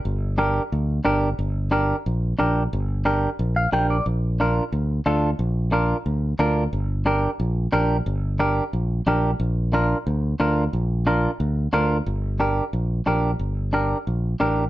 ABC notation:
X:1
M:4/4
L:1/8
Q:1/4=180
K:Gm
V:1 name="Clean electric guitar"
z2 [DGB] z3 [DGB] z | z2 [DGB] z3 [DGB] z | z2 [DGB] z2 f [DGBg] d | z2 [DFB] z3 [DFA] z |
z2 [DFB] z3 [DFB] z | z2 [DGB] z3 [DGB] z | z2 [DGB] z3 [DGB] z | z2 [DFB] z3 [DFB] z |
z2 [DFB] z3 [DFB] z | z2 [DGB] z3 [DGB] z | z2 [DGB] z3 [DGB] z |]
V:2 name="Fingered electric bass" clef=bass
G,,,4 D,,2 G,,,2 | G,,,4 B,,,2 B,,,2 | G,,,4 B,,,2 B,,,2 | B,,,4 D,,2 D,,2 |
B,,,4 D,,2 D,,2 | G,,,4 B,,,2 B,,,2 | G,,,4 B,,,2 B,,,2 | B,,,4 D,,2 D,,2 |
B,,,4 D,,2 D,,2 | G,,,4 B,,,2 B,,,2 | G,,,4 B,,,2 A,,,2 |]